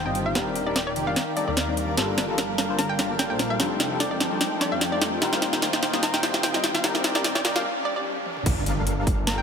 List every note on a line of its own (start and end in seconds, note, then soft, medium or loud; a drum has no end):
0.00 0.33 D#3 medium
0.00 0.34 D#3 medium
0.00 0.34 C4 medium
0.00 0.33 D#4 medium
0.00 0.32 F4 medium
0.00 1.94 G4 medium
0.00 0.33 C5 medium
0.00 0.33 F5 medium
0.00 0.33 G5 medium
0.00 riser medium
0.05 0.34 G1 medium
0.05 0.33 G3 medium
0.05 0.33 C4 medium
0.05 0.33 D#4 medium
0.05 0.33 F4 medium
0.05 0.34 D#5 medium
0.05 0.12 G5 medium
0.15 closed hi-hat medium
0.26 0.40 F5 medium
0.34 0.95 D#1 medium
0.34 0.94 D#3 medium
0.34 1.96 D#3 medium
0.34 0.63 G3 medium
0.34 1.96 A#3 medium
0.34 0.64 C4 medium
0.34 0.64 D4 medium
0.34 0.94 D#4 medium
0.34 0.64 D#4 medium
0.34 0.94 A#4 medium
0.34 0.64 A#4 loud
0.34 0.94 D5 medium
0.34 1.96 D5 medium
0.34 0.94 G5 medium
0.34 snare medium
0.34 closed hi-hat medium
0.56 closed hi-hat medium
0.66 0.77 G3 medium
0.66 0.77 C4 medium
0.66 0.77 D4 medium
0.66 0.78 D#4 medium
0.66 0.78 A#4 medium
0.66 0.72 D5 medium
0.76 0.83 D5 medium
0.76 snare medium
0.76 closed hi-hat medium
0.87 1.05 D5 medium
0.96 1.15 F1 loud
0.96 1.45 D#3 medium
0.96 1.45 D#4 medium
0.96 1.45 A#4 medium
0.96 1.45 D5 medium
0.96 1.45 G5 medium
0.96 closed hi-hat medium
1.06 1.17 G3 medium
1.06 1.18 C4 medium
1.06 1.18 D4 medium
1.06 1.18 D#4 medium
1.06 1.18 D5 loud
1.06 1.23 F5 medium
1.16 snare medium
1.16 closed hi-hat medium
1.36 1.48 G3 medium
1.36 1.49 C4 medium
1.36 1.49 D4 medium
1.36 1.49 D#4 medium
1.36 1.49 A4 loud
1.36 1.44 D5 medium
1.36 closed hi-hat medium
1.48 1.96 D#2 medium
1.48 1.95 D#3 medium
1.48 1.95 D#4 medium
1.48 1.95 A#4 medium
1.48 1.95 D5 medium
1.48 1.54 D5 medium
1.48 1.95 F5 medium
1.57 snare medium
1.57 closed hi-hat medium
1.67 1.95 G3 medium
1.67 1.95 C4 medium
1.67 1.95 D4 medium
1.67 1.95 D#4 medium
1.67 1.96 D5 medium
1.77 closed hi-hat medium
1.96 3.29 G1 medium
1.96 2.26 G3 medium
1.96 2.56 G3 medium
1.96 3.58 G3 medium
1.96 2.26 A#3 medium
1.96 3.58 A#3 medium
1.96 2.56 D4 medium
1.96 2.26 D4 medium
1.96 6.80 F4 medium
1.96 2.26 F4 medium
1.96 2.56 A4 medium
1.96 2.27 A4 loud
1.96 2.56 A#4 medium
1.96 2.56 F5 medium
1.96 3.58 A5 medium
1.96 snare medium
1.96 closed hi-hat medium
2.18 snare medium
2.18 closed hi-hat medium
2.28 2.39 G3 medium
2.28 2.39 A#3 medium
2.28 2.40 D4 medium
2.28 2.40 F4 medium
2.28 2.40 A4 medium
2.38 snare medium
2.38 closed hi-hat medium
2.58 3.57 G3 medium
2.58 3.57 D4 medium
2.58 3.57 A4 medium
2.58 3.57 A#4 medium
2.58 3.57 F5 medium
2.58 snare medium
2.58 closed hi-hat medium
2.68 2.80 G3 loud
2.68 2.80 A#3 medium
2.68 2.80 D4 medium
2.68 2.80 F4 medium
2.68 2.81 C5 loud
2.79 2.87 A#5 medium
2.79 snare medium
2.79 closed hi-hat medium
2.89 3.06 G5 loud
2.98 3.11 G3 medium
2.98 3.11 A#3 medium
2.98 3.11 D4 medium
2.98 3.11 F4 medium
2.98 3.12 G4 loud
2.98 snare medium
2.98 closed hi-hat medium
3.19 3.26 G5 medium
3.19 snare medium
3.19 closed hi-hat medium
3.29 3.58 A#1 medium
3.29 3.57 G3 medium
3.29 3.57 A#3 medium
3.29 3.57 D4 medium
3.29 3.58 F4 medium
3.29 3.58 C5 medium
3.29 3.36 G5 medium
3.39 snare medium
3.39 closed hi-hat medium
3.50 3.64 F5 loud
3.59 4.19 F1 loud
3.59 5.20 D#3 medium
3.59 4.18 F3 medium
3.59 3.88 G3 loud
3.59 5.20 A3 medium
3.59 4.18 C4 medium
3.59 3.88 D4 medium
3.59 4.18 D4 medium
3.59 4.18 D#4 medium
3.59 3.88 D#4 medium
3.59 3.88 F4 medium
3.59 4.18 A4 medium
3.59 3.89 A4 loud
3.59 4.18 G5 medium
3.59 snare medium
3.59 closed hi-hat medium
3.80 snare medium
3.80 closed hi-hat medium
3.90 4.01 G3 medium
3.90 4.02 D4 medium
3.90 4.02 D#4 medium
3.90 4.02 F4 medium
3.90 4.02 A4 medium
4.00 4.07 D5 medium
4.00 snare medium
4.00 closed hi-hat medium
4.11 4.17 D5 medium
4.20 4.39 G1 loud
4.20 5.20 F3 medium
4.20 5.20 C4 medium
4.20 5.20 D4 medium
4.20 5.20 D#4 medium
4.20 5.20 A4 medium
4.20 5.20 G5 loud
4.20 snare medium
4.20 closed hi-hat medium
4.30 4.42 G3 loud
4.30 4.42 D4 medium
4.30 4.42 D#4 medium
4.30 4.43 F4 medium
4.30 4.43 D5 loud
4.41 snare medium
4.41 closed hi-hat medium
4.60 4.73 G3 loud
4.60 4.73 D4 medium
4.60 4.73 D#4 medium
4.60 4.73 F4 medium
4.60 4.74 G4 loud
4.60 4.70 D5 medium
4.60 snare medium
4.60 closed hi-hat medium
4.72 5.21 F2 medium
4.72 4.90 F5 medium
4.81 snare medium
4.81 closed hi-hat medium
4.91 5.19 G3 medium
4.91 5.19 D4 medium
4.91 5.20 D#4 medium
4.91 5.20 F4 medium
4.91 5.26 D5 medium
4.91 5.20 D5 medium
5.01 snare medium
5.01 closed hi-hat medium
5.21 6.53 D#1 loud
5.21 5.80 D#3 medium
5.21 7.63 D#3 medium
5.21 5.50 G3 loud
5.21 5.50 C4 medium
5.21 6.82 C4 medium
5.21 5.80 D#4 medium
5.21 5.50 D#4 medium
5.21 5.51 F4 medium
5.21 7.63 G4 medium
5.21 5.51 A#4 loud
5.21 5.80 C5 medium
5.21 5.80 F5 medium
5.21 5.80 G5 medium
5.21 snare medium
5.21 closed hi-hat medium
5.33 snare medium
5.42 snare medium
5.42 closed hi-hat medium
5.52 5.63 G3 medium
5.52 5.64 C4 medium
5.52 5.64 D#4 medium
5.52 5.64 F4 medium
5.52 5.64 A#4 medium
5.52 snare medium
5.62 snare loud
5.62 closed hi-hat medium
5.73 snare medium
5.83 6.82 D#3 medium
5.83 6.82 D#4 medium
5.83 6.82 C5 medium
5.83 6.82 F5 medium
5.83 6.82 G5 medium
5.83 snare medium
5.83 closed hi-hat medium
5.92 6.04 G3 loud
5.92 6.04 C4 medium
5.92 6.04 D#4 medium
5.92 6.05 F4 medium
5.92 6.05 D#5 loud
5.92 snare medium
6.03 6.12 A#5 medium
6.03 snare loud
6.03 closed hi-hat medium
6.14 6.30 G5 loud
6.14 snare medium
6.22 6.35 G3 loud
6.22 6.35 C4 medium
6.22 6.35 D#4 medium
6.22 6.36 F4 medium
6.22 6.36 G4 loud
6.22 snare loud
6.22 closed hi-hat medium
6.34 snare medium
6.43 6.50 G5 medium
6.43 snare loud
6.43 closed hi-hat medium
6.53 6.83 G1 medium
6.53 6.81 G3 medium
6.53 6.81 C4 medium
6.53 6.82 D#4 medium
6.53 6.82 F4 medium
6.53 6.82 D#5 medium
6.53 6.60 G5 medium
6.53 snare medium
6.64 snare loud
6.64 closed hi-hat medium
6.74 6.88 F5 medium
6.74 snare medium
6.83 7.44 D#1 loud
6.83 7.42 D#3 medium
6.83 7.12 G3 loud
6.83 7.64 A#3 medium
6.83 7.12 C4 medium
6.83 7.13 D4 medium
6.83 7.42 D#4 medium
6.83 7.13 D#4 medium
6.83 7.42 A#4 medium
6.83 7.13 A#4 loud
6.83 7.42 D5 medium
6.83 7.64 D5 medium
6.83 7.42 G5 medium
6.83 snare loud
6.83 closed hi-hat medium
6.95 snare medium
7.04 snare loud
7.04 closed hi-hat medium
7.14 7.26 G3 medium
7.14 7.26 C4 medium
7.14 7.26 D4 medium
7.14 7.26 D#4 medium
7.14 7.27 A#4 medium
7.14 7.21 D5 medium
7.14 snare medium
7.24 7.31 D5 medium
7.24 snare loud
7.24 closed hi-hat medium
7.35 7.53 D5 medium
7.35 snare medium
7.45 7.64 F1 loud
7.45 7.65 D#3 medium
7.45 7.65 D#4 medium
7.45 7.65 A#4 medium
7.45 7.65 D5 medium
7.45 7.65 G5 medium
7.45 snare loud
7.45 closed hi-hat medium
7.55 7.64 G3 loud
7.55 7.65 C4 medium
7.55 7.65 D4 medium
7.55 7.65 D#4 medium
7.55 7.65 D5 loud
7.55 7.72 F5 medium
7.55 snare loud
7.65 swell medium
7.85 7.92 D5 medium
7.96 8.02 D5 medium
8.26 high tom medium
8.37 mid tom medium
8.46 9.42 G1 loud
8.46 9.05 G3 medium
8.46 9.05 D4 medium
8.46 9.05 A4 medium
8.46 9.05 A#4 medium
8.46 9.05 F5 medium
8.46 kick loud
8.46 closed hi-hat medium
8.46 crash loud
8.46 impact medium
8.66 closed hi-hat medium
8.87 closed hi-hat medium
9.07 9.42 G3 medium
9.07 9.42 D4 medium
9.07 9.42 A4 medium
9.07 9.42 A#4 medium
9.07 9.42 F5 medium
9.07 kick loud
9.07 closed hi-hat medium
9.27 9.36 A#5 medium
9.27 snare loud
9.27 closed hi-hat medium
9.38 9.42 G5 medium